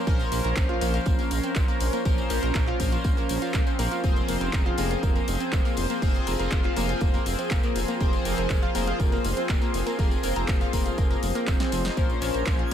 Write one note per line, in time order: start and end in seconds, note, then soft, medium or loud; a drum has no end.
0.00 4.00 C#4 medium
0.00 4.00 A#4 medium
0.07 0.24 A#1 loud
0.07 0.79 F3 loud
0.07 0.14 A#3 loud
0.07 0.79 C#4 medium
0.07 0.14 A#4 medium
0.07 0.78 A#4 medium
0.07 0.79 C5 loud
0.07 kick loud
0.07 closed hi-hat medium
0.07 tambourine medium
0.20 closed hi-hat soft
0.20 tambourine soft
0.32 0.41 A#1 medium
0.32 0.38 A#3 medium
0.32 0.38 A#4 medium
0.32 open hi-hat loud
0.32 tambourine loud
0.44 0.53 A#1 medium
0.44 0.48 A#4 medium
0.44 0.48 A#5 medium
0.44 closed hi-hat medium
0.44 tambourine soft
0.56 0.74 A#1 medium
0.56 0.63 A#3 medium
0.56 0.63 A#4 medium
0.56 kick loud
0.56 clap loud
0.56 closed hi-hat medium
0.56 tambourine medium
0.69 0.76 F4 loud
0.69 0.76 F5 medium
0.69 closed hi-hat soft
0.81 0.99 A#1 loud
0.81 2.02 F3 medium
0.81 0.91 A#3 loud
0.81 2.02 C#4 medium
0.81 0.91 A#4 medium
0.81 2.02 A#4 medium
0.81 2.02 C5 medium
0.81 open hi-hat loud
0.81 tambourine loud
0.94 0.98 F4 medium
0.94 0.98 F5 medium
0.94 closed hi-hat soft
0.94 tambourine soft
1.06 1.24 A#1 medium
1.06 1.13 A#3 loud
1.06 1.13 A#4 medium
1.06 kick loud
1.06 closed hi-hat medium
1.06 tambourine medium
1.19 1.25 A#3 loud
1.19 1.25 A#4 medium
1.19 closed hi-hat soft
1.19 tambourine soft
1.31 1.40 A#1 loud
1.31 open hi-hat loud
1.31 tambourine medium
1.43 1.47 C4 medium
1.43 1.47 C5 medium
1.43 closed hi-hat medium
1.43 tambourine soft
1.56 1.65 A#1 medium
1.56 1.62 A#3 medium
1.56 1.62 A#4 medium
1.56 kick loud
1.56 clap loud
1.56 closed hi-hat medium
1.56 tambourine medium
1.68 1.75 A#3 loud
1.68 1.75 A#4 medium
1.68 closed hi-hat soft
1.68 tambourine soft
1.80 1.89 A#1 medium
1.80 open hi-hat loud
1.80 tambourine medium
1.93 1.97 A#3 loud
1.93 1.97 A#4 medium
1.93 closed hi-hat soft
1.93 tambourine soft
2.05 2.23 A#1 loud
2.05 2.77 F3 loud
2.05 2.12 A#3 loud
2.05 2.77 C#4 medium
2.05 2.12 A#4 medium
2.05 2.77 A#4 medium
2.05 2.77 C5 loud
2.05 kick loud
2.05 closed hi-hat medium
2.05 tambourine medium
2.18 closed hi-hat soft
2.18 tambourine soft
2.30 2.39 A#1 medium
2.30 2.37 A#3 medium
2.30 2.37 A#4 medium
2.30 open hi-hat loud
2.30 tambourine loud
2.42 2.51 A#1 medium
2.42 2.47 A#4 medium
2.42 2.47 A#5 medium
2.42 closed hi-hat medium
2.42 tambourine soft
2.55 2.72 A#1 medium
2.55 2.61 A#3 medium
2.55 2.61 A#4 medium
2.55 kick loud
2.55 clap loud
2.55 closed hi-hat medium
2.55 tambourine medium
2.67 2.74 F4 loud
2.67 2.74 F5 medium
2.67 clap soft
2.67 closed hi-hat soft
2.80 2.97 A#1 loud
2.80 4.01 F3 medium
2.80 2.90 A#3 loud
2.80 4.01 C#4 medium
2.80 2.90 A#4 medium
2.80 4.01 A#4 medium
2.80 4.01 C5 medium
2.80 kick medium
2.80 open hi-hat loud
2.80 tambourine loud
2.92 2.96 F4 medium
2.92 2.96 F5 medium
2.92 closed hi-hat soft
2.92 tambourine soft
3.04 3.22 A#1 medium
3.04 3.11 A#3 loud
3.04 3.11 A#4 medium
3.04 kick loud
3.04 closed hi-hat medium
3.04 tambourine medium
3.17 3.24 A#3 loud
3.17 3.24 A#4 medium
3.17 closed hi-hat soft
3.17 tambourine soft
3.29 3.38 A#1 loud
3.29 open hi-hat loud
3.29 tambourine loud
3.42 3.48 F4 loud
3.42 3.48 F5 medium
3.42 closed hi-hat soft
3.42 tambourine soft
3.54 3.63 A#1 medium
3.54 3.58 A#3 medium
3.54 3.58 A#4 medium
3.54 kick loud
3.54 clap loud
3.54 closed hi-hat medium
3.54 tambourine medium
3.66 3.73 C4 loud
3.66 3.73 C5 medium
3.66 closed hi-hat soft
3.66 tambourine soft
3.79 3.88 A#1 medium
3.79 3.89 A#3 loud
3.79 3.89 A#4 medium
3.79 open hi-hat loud
3.79 tambourine medium
3.91 4.01 F4 medium
3.91 4.01 F5 medium
3.91 closed hi-hat soft
3.91 tambourine soft
4.04 4.21 F1 loud
4.04 4.75 F3 loud
4.04 4.10 A#3 loud
4.04 4.75 C4 medium
4.04 11.93 F4 medium
4.04 11.93 G#4 medium
4.04 4.75 G#4 medium
4.04 4.10 A#4 medium
4.04 11.93 C5 medium
4.04 4.75 C5 loud
4.04 kick loud
4.04 closed hi-hat medium
4.04 tambourine medium
4.16 closed hi-hat soft
4.16 tambourine soft
4.28 4.37 F1 medium
4.28 4.35 A#3 medium
4.28 4.35 A#4 medium
4.28 open hi-hat loud
4.28 tambourine medium
4.41 4.50 F1 medium
4.41 4.45 A#4 medium
4.41 4.45 A#5 medium
4.41 closed hi-hat medium
4.41 tambourine soft
4.53 4.71 F1 medium
4.53 4.60 A#3 medium
4.53 4.60 A#4 medium
4.53 kick loud
4.53 clap loud
4.53 closed hi-hat medium
4.53 tambourine soft
4.66 4.72 F4 loud
4.66 4.72 F5 medium
4.66 closed hi-hat soft
4.78 4.96 F1 loud
4.78 5.99 F3 medium
4.78 4.88 A#3 loud
4.78 5.99 C4 medium
4.78 5.99 G#4 medium
4.78 4.88 A#4 medium
4.78 5.99 C5 medium
4.78 open hi-hat loud
4.78 tambourine medium
4.91 4.95 F4 medium
4.91 4.95 F5 medium
4.91 closed hi-hat soft
4.91 tambourine soft
5.03 5.20 F1 medium
5.03 5.09 A#3 loud
5.03 5.09 A#4 medium
5.03 kick loud
5.03 closed hi-hat medium
5.03 tambourine medium
5.15 5.22 A#3 loud
5.15 5.22 A#4 medium
5.15 closed hi-hat soft
5.15 tambourine soft
5.28 5.36 F1 loud
5.28 open hi-hat loud
5.28 tambourine medium
5.40 5.44 C4 medium
5.40 5.44 C5 medium
5.40 closed hi-hat soft
5.40 tambourine soft
5.52 5.61 F1 medium
5.52 5.59 A#3 medium
5.52 5.59 A#4 medium
5.52 kick loud
5.52 clap loud
5.52 closed hi-hat soft
5.52 tambourine medium
5.65 5.71 A#3 loud
5.65 5.71 A#4 medium
5.65 closed hi-hat soft
5.65 tambourine soft
5.77 5.86 F1 medium
5.77 open hi-hat loud
5.77 tambourine medium
5.90 5.94 A#3 loud
5.90 5.94 A#4 medium
5.90 closed hi-hat soft
5.90 tambourine soft
6.02 6.20 F1 loud
6.02 6.74 F3 loud
6.02 6.09 A#3 loud
6.02 6.74 C4 medium
6.02 6.74 G#4 medium
6.02 6.09 A#4 medium
6.02 6.74 C5 loud
6.02 kick loud
6.02 closed hi-hat medium
6.02 tambourine soft
6.15 closed hi-hat soft
6.15 tambourine soft
6.27 6.36 F1 medium
6.27 6.33 A#3 medium
6.27 6.33 A#4 medium
6.27 open hi-hat loud
6.27 tambourine medium
6.39 6.48 F1 medium
6.39 6.43 A#4 medium
6.39 6.43 A#5 medium
6.39 closed hi-hat medium
6.39 tambourine soft
6.51 6.69 F1 medium
6.51 6.58 A#3 medium
6.51 6.58 A#4 medium
6.51 kick loud
6.51 clap loud
6.51 closed hi-hat medium
6.51 tambourine medium
6.64 6.71 F4 loud
6.64 6.71 F5 medium
6.64 clap soft
6.64 closed hi-hat soft
6.76 6.94 F1 loud
6.76 7.98 F3 medium
6.76 6.86 A#3 loud
6.76 7.98 C4 medium
6.76 7.98 G#4 medium
6.76 6.86 A#4 medium
6.76 7.98 C5 medium
6.76 open hi-hat loud
6.76 tambourine loud
6.89 6.93 F4 medium
6.89 6.93 F5 medium
6.89 closed hi-hat medium
6.89 tambourine soft
7.01 7.19 F1 medium
7.01 7.08 A#3 loud
7.01 7.08 A#4 medium
7.01 kick loud
7.01 closed hi-hat medium
7.01 tambourine soft
7.14 7.20 A#3 loud
7.14 7.20 A#4 medium
7.14 closed hi-hat soft
7.14 tambourine soft
7.26 7.35 F1 loud
7.26 open hi-hat loud
7.26 tambourine medium
7.39 7.42 C4 medium
7.39 7.42 C5 medium
7.39 closed hi-hat medium
7.39 tambourine soft
7.51 7.60 F1 medium
7.51 7.57 A#3 medium
7.51 7.57 A#4 medium
7.51 kick loud
7.51 clap loud
7.51 closed hi-hat medium
7.51 tambourine medium
7.63 7.70 A#3 loud
7.63 7.70 A#4 medium
7.63 closed hi-hat soft
7.63 tambourine soft
7.75 7.84 F1 medium
7.75 open hi-hat loud
7.75 tambourine medium
7.88 7.92 A#3 loud
7.88 7.92 A#4 medium
7.88 closed hi-hat medium
7.88 tambourine soft
8.00 8.18 F1 loud
8.00 8.72 F3 loud
8.00 8.07 A#3 loud
8.00 8.72 C4 medium
8.00 8.72 G#4 medium
8.00 8.07 A#4 medium
8.00 8.72 C5 loud
8.00 kick loud
8.00 closed hi-hat medium
8.00 tambourine soft
8.13 closed hi-hat soft
8.13 tambourine soft
8.25 8.34 F1 medium
8.25 8.32 A#3 medium
8.25 8.32 A#4 medium
8.25 open hi-hat loud
8.25 tambourine medium
8.37 8.46 F1 medium
8.37 8.42 A#4 medium
8.37 8.42 A#5 medium
8.37 closed hi-hat medium
8.37 tambourine soft
8.50 8.67 F1 medium
8.50 8.57 A#3 medium
8.50 8.57 A#4 medium
8.50 kick loud
8.50 clap loud
8.50 closed hi-hat medium
8.50 tambourine soft
8.63 8.69 F4 loud
8.63 8.69 F5 medium
8.63 closed hi-hat soft
8.75 8.92 F1 loud
8.75 9.96 F3 medium
8.75 8.85 A#3 loud
8.75 9.96 C4 medium
8.75 9.96 G#4 medium
8.75 8.85 A#4 medium
8.75 9.96 C5 medium
8.75 open hi-hat loud
8.75 tambourine loud
8.87 8.91 F4 medium
8.87 8.91 F5 medium
8.87 closed hi-hat medium
8.87 tambourine soft
9.00 9.17 F1 medium
9.00 9.06 A#3 loud
9.00 9.06 A#4 medium
9.00 kick loud
9.00 closed hi-hat medium
9.00 tambourine soft
9.12 9.19 A#3 loud
9.12 9.19 A#4 medium
9.12 closed hi-hat soft
9.12 tambourine soft
9.24 9.33 F1 loud
9.24 open hi-hat loud
9.24 tambourine medium
9.36 9.41 C4 medium
9.36 9.41 C5 medium
9.36 closed hi-hat medium
9.36 tambourine soft
9.49 9.58 F1 medium
9.49 9.56 A#3 medium
9.49 9.56 A#4 medium
9.49 kick loud
9.49 clap loud
9.49 closed hi-hat medium
9.49 tambourine soft
9.61 9.68 A#3 loud
9.61 9.68 A#4 medium
9.61 closed hi-hat soft
9.61 tambourine soft
9.74 9.83 F1 medium
9.74 open hi-hat loud
9.74 tambourine medium
9.87 9.90 A#3 loud
9.87 9.90 A#4 medium
9.87 closed hi-hat medium
9.87 tambourine soft
9.99 10.16 F1 loud
9.99 10.70 F3 loud
9.99 10.05 A#3 loud
9.99 10.70 C4 medium
9.99 10.70 G#4 medium
9.99 10.05 A#4 medium
9.99 10.70 C5 loud
9.99 kick loud
9.99 closed hi-hat medium
9.99 tambourine soft
10.11 closed hi-hat soft
10.11 tambourine soft
10.23 10.32 F1 medium
10.23 10.30 A#3 medium
10.23 10.30 A#4 medium
10.23 open hi-hat loud
10.23 tambourine medium
10.36 10.45 F1 medium
10.36 10.40 A#4 medium
10.36 10.40 A#5 medium
10.36 closed hi-hat medium
10.36 tambourine soft
10.48 10.66 F1 medium
10.48 10.55 A#3 medium
10.48 10.55 A#4 medium
10.48 kick loud
10.48 clap loud
10.48 closed hi-hat medium
10.48 tambourine medium
10.61 10.67 F4 loud
10.61 10.67 F5 medium
10.61 closed hi-hat soft
10.61 tambourine soft
10.73 10.91 F1 loud
10.73 11.94 F3 medium
10.73 10.83 A#3 loud
10.73 11.94 C4 medium
10.73 11.94 G#4 medium
10.73 10.83 A#4 medium
10.73 11.94 C5 medium
10.73 kick medium
10.73 open hi-hat loud
10.73 tambourine loud
10.86 10.90 F4 medium
10.86 10.90 F5 medium
10.86 closed hi-hat medium
10.86 tambourine soft
10.98 11.15 F1 medium
10.98 11.05 A#3 loud
10.98 11.05 A#4 medium
10.98 kick loud
10.98 closed hi-hat medium
10.98 tambourine soft
11.10 11.17 A#3 loud
11.10 11.17 A#4 medium
11.10 closed hi-hat soft
11.10 tambourine soft
11.23 11.32 F1 loud
11.23 open hi-hat loud
11.23 tambourine medium
11.35 11.45 A#3 loud
11.35 11.45 A#4 medium
11.35 closed hi-hat medium
11.35 tambourine soft
11.47 11.56 F1 medium
11.47 11.57 C4 medium
11.47 11.57 C5 medium
11.47 kick loud
11.47 clap loud
11.47 closed hi-hat medium
11.47 tambourine medium
11.60 11.66 C4 loud
11.60 11.66 C5 medium
11.60 snare medium
11.60 closed hi-hat soft
11.60 tambourine soft
11.72 11.90 F1 medium
11.72 11.76 F3 medium
11.72 11.76 F4 medium
11.72 open hi-hat loud
11.72 tambourine medium
11.85 11.91 D#4 medium
11.85 11.91 D#5 medium
11.85 snare loud
11.85 closed hi-hat medium
11.85 tambourine soft
11.97 12.15 A#1 loud
11.97 12.69 F3 loud
11.97 12.04 A#3 loud
11.97 12.74 C#4 medium
11.97 12.69 C#4 medium
11.97 12.74 A#4 medium
11.97 12.04 A#4 medium
11.97 12.69 A#4 medium
11.97 12.62 C5 loud
11.97 12.69 C5 loud
11.97 12.74 G#5 medium
11.97 12.74 G#6 medium
11.97 kick loud
11.97 closed hi-hat medium
11.97 tambourine medium
12.10 closed hi-hat soft
12.10 tambourine soft
12.22 12.31 A#1 medium
12.22 12.28 C#4 loud
12.22 12.28 C#5 medium
12.22 open hi-hat loud
12.22 tambourine medium
12.34 12.43 A#1 medium
12.34 12.38 A#4 medium
12.34 12.38 A#5 medium
12.34 closed hi-hat medium
12.34 tambourine soft
12.46 12.64 A#1 medium
12.46 12.53 A#3 medium
12.46 12.53 A#4 medium
12.46 kick loud
12.46 clap loud
12.46 closed hi-hat medium
12.46 tambourine medium
12.59 12.66 F4 loud
12.59 12.66 F5 medium
12.59 closed hi-hat soft